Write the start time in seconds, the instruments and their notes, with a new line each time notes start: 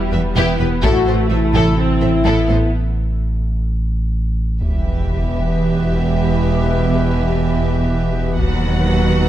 Already playing: sub bass E1, analog synth pad E3 B3 E4 B4, viola section G3, french horn section E4
0.12 double bass section E1, cello section E2, violin section B4 E5
0.36 double bass section E1, cello section E2, viola section B3, violin section E4 G4 B4
0.59 double bass section E1, cello section E2, violin section G4 B4
0.83 sub bass A1, double bass section A1, cello section A2, analog synth pad C3 E3 E4 A4, viola section A3, violin section E4 A4, french horn section F#4, taiko
1.06 double bass section A1, cello section A2, violin section A4 C5
1.30 double bass section A1, cello section A2, french horn section E4, violin section A4 C5 E5
1.54 double bass section A1, cello section A2, violin section E4 A4, taiko
1.78 viola section C4, french horn section E4
2.01 double bass section A1, cello section A2, violin section A4 C5 E5
2.25 double bass section A1, cello section A2, viola section B3, violin section E4 A4
2.49 double bass section A1, cello section A2, violin section A4 C5
4.61 sub bass E1, double bass section E1, cello section E2, trombone section B2 E3, analog synth pad E3 B3 G4 B4, french horn section B3 G4, viola section G4, violin section B4 E5, taiko, sub drop
5.32 taiko
8.38 sub bass D#1, double bass section D#2, cello section D#2, trombone section B2 F#3, analog synth pad F#3 B3 F#4 B4, french horn section B3 F#4, viola section F#4, violin section B4 F#5, taiko